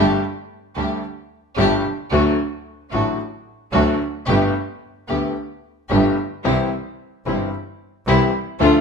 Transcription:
Already playing: upright piano G1 G2 D3 G3 A3 G4, double bass G1, string section A3 D4 G4
0.76 double bass D2, upright piano D2 D3 G3 A3 G4, string section A3 D4 G4
1.57 double bass G1, upright piano G1 G2 D3 G3 A3 G4, string section A3 D4 G4
2.11 double bass D2, upright piano D2 D3 F#3 A3 F#4, string section A3 D4 F#4
2.92 double bass A1, upright piano A1 A2 D3 F#3 A3 F#4, string section A3 D4 F#4
3.72 double bass D2, upright piano D2 D3 F#3 A3 F#4, string section A3 D4 F#4
4.27 double bass G1, upright piano G1 G2 D3 A3 B3 G4, string section A3 B3 G4
5.08 double bass D2, upright piano D2 D3 A3 B3 G4, string section A3 B3 G4
5.90 double bass G1, upright piano G1 G2 D3 A3 B3 G4, string section A3 B3 G4
6.44 upright piano C2 C3 E3 G3 C4 G4, double bass C2, string section G3 C4 E4
7.26 upright piano G1 G2 E3 G3 C4 G4, double bass G1, string section G3 C4 E4
8.06 double bass C2, upright piano C2 C3 E3 G3 C4 G4, string section G3 C4 E4
8.60 double bass D2, upright piano D2 D3 F3 A3 D4 A4, string section A3 D4 F4

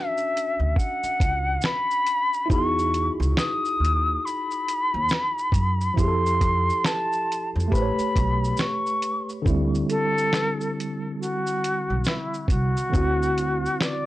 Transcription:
Already playing: tine electric piano C#4 D4 F#4 E5, flute E5
0.17 shaker
0.37 closed hi-hat, shaker
0.59 upright bass D2
0.76 flute F#5, kick, shaker
1.03 muted upright bass stroke, shaker
1.20 upright bass C#2, kick, closed hi-hat, shaker
1.61 flute B5, finger snap, snare, shaker
1.91 shaker
2.07 closed hi-hat, shaker
2.33 shaker
2.46 tine electric piano D#4 E4
2.50 upright bass E2, tine electric piano F#4 G#4, flute C#6, kick, shaker
2.79 shaker
2.94 closed hi-hat, shaker
3.20 upright bass C#2, shaker
3.37 flute D#6, finger snap, snare, shaker
3.65 shaker
3.80 upright bass D#2
3.85 closed hi-hat, shaker
4.25 flute B5, shaker
4.51 shaker
4.68 closed hi-hat, shaker
4.94 upright bass D#2
5.09 finger snap, snare, shaker
5.38 shaker
5.52 upright bass F#2, kick, closed hi-hat, shaker
5.81 shaker
5.94 upright bass F2, tine electric piano F3 E4, kick
5.98 tine electric piano G4 G#4, flute C6, shaker
6.08 tine electric piano A4
6.26 shaker
6.41 kick, closed hi-hat, shaker
6.70 shaker
6.85 flute A5, finger snap, snare, shaker
7.12 shaker
7.32 closed hi-hat, shaker
7.56 upright bass F2
7.60 shaker
7.68 tine electric piano A3 G4, kick
7.72 upright bass A1, tine electric piano B4 C5, flute B5, shaker
7.82 tine electric piano C#5
7.99 muted upright bass stroke, shaker
8.16 upright bass B1, kick, closed hi-hat, shaker
8.44 shaker
8.57 flute C#6, finger snap, snare, shaker
8.86 shaker
9.02 closed hi-hat, shaker
9.29 shaker
9.42 upright bass D2, tine electric piano D3 C4, kick
9.46 tine electric piano G3 E4, shaker
9.75 shaker
9.90 flute A4, closed hi-hat, shaker
10.18 shaker
10.33 finger snap, snare, shaker
10.61 shaker
10.80 closed hi-hat, shaker
11.20 flute F#4, shaker
11.47 shaker
11.64 closed hi-hat, shaker
11.90 upright bass B1
12.04 flute E4, finger snap, snare, shaker
12.34 shaker
12.48 upright bass C2, flute F#4, kick, closed hi-hat, shaker
12.77 shaker
12.90 upright bass D2, tine electric piano D3 C4, kick
12.94 tine electric piano E4 F#4, shaker
13.23 shaker
13.38 closed hi-hat, shaker
13.66 shaker
13.81 flute D5, finger snap, snare, shaker

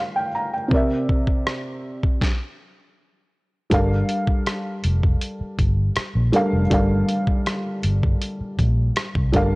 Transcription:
Already playing: felt piano G3 D4 A4 A#4 F5
0.16 felt piano G5
0.35 felt piano A#5
0.53 felt piano G5
0.68 felt piano C3 C4 A#4, kick
0.74 felt piano D5 E5
1.09 kick
1.27 kick
1.47 cross-stick
2.03 kick
2.21 kick, snare
3.70 fingered electric bass G1, felt piano G3 D4 A4 A#4 F5, kick, closed hi-hat
4.09 closed hi-hat
4.27 kick
4.46 cross-stick, closed hi-hat
4.84 fingered electric bass F1, closed hi-hat
5.03 kick
5.21 closed hi-hat
5.41 muted fingered electric bass stroke
5.59 fingered electric bass G1, kick, closed hi-hat
5.96 muted fingered electric bass stroke, cross-stick, closed hi-hat
6.15 fingered electric bass A#1
6.32 felt piano G3 D4 A4 A#4 F5, closed hi-hat
6.53 fingered electric bass F1
6.70 fingered electric bass G1, felt piano G3 D4 A4 A#4 F5, kick, closed hi-hat
7.09 closed hi-hat
7.27 kick
7.46 cross-stick, closed hi-hat
7.83 fingered electric bass G1, closed hi-hat
8.03 kick
8.22 closed hi-hat
8.41 muted fingered electric bass stroke
8.59 fingered electric bass A#1, kick, closed hi-hat
8.96 cross-stick, closed hi-hat
9.15 fingered electric bass C2, kick
9.32 fingered electric bass G1, felt piano G3 D4 A4 A#4 F5, kick, closed hi-hat

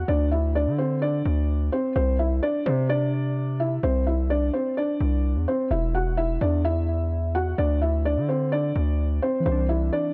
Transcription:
0.08 808-style bass D2, felt piano D4 D5
0.31 felt piano E4 E5
0.55 felt piano D4 D5
0.67 808-style bass D3
0.78 felt piano C4 C5
1.02 felt piano D4 D5
1.25 808-style bass D2
1.72 felt piano C4 C5
1.96 808-style bass C2, felt piano C4 C5
2.19 felt piano E4 E5
2.43 felt piano D4 D5
2.66 808-style bass C3, felt piano C4 C5
2.89 felt piano D4 D5
3.60 felt piano E4 E5
3.83 808-style bass C2, felt piano C4 C5
4.07 felt piano E4 E5
4.30 felt piano D4 D5
4.53 felt piano C4 C5
4.77 felt piano D4 D5
5.01 808-style bass C2
5.36 808-style bass E2
5.48 felt piano C4 C5
5.71 808-style bass E1, felt piano E4 E5
5.95 felt piano F#4 F#5
6.17 felt piano E4 E5
6.41 808-style bass E2, felt piano D4 D5
6.65 felt piano E4 E5
7.35 felt piano F#4 F#5
7.58 808-style bass D2, felt piano D4 D5
7.82 felt piano E4 E5
8.05 felt piano D4 D5
8.17 808-style bass D3
8.29 felt piano C4 C5
8.52 felt piano D4 D5
8.76 808-style bass D2
9.22 felt piano C4 C5
9.40 synth keys E3
9.46 808-style bass C2, synth keys C4, felt piano C4 C5
9.52 synth keys D4
9.69 felt piano E4 E5
9.93 felt piano D4 D5

